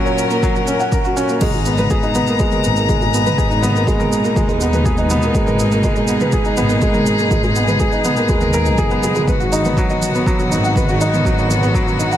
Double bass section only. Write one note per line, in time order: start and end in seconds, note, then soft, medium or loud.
1.41 2.10 G#1 loud
2.64 3.33 G#1 loud
3.38 4.06 G#1 loud
4.36 5.29 D#2 medium
5.35 6.03 G#1 loud
6.58 7.26 G#1 loud
7.31 7.99 G#1 loud
8.29 8.79 D#2 medium
8.78 9.22 F#1 medium
9.27 9.96 G#1 loud
10.51 11.19 G#1 loud
11.25 11.93 G#1 loud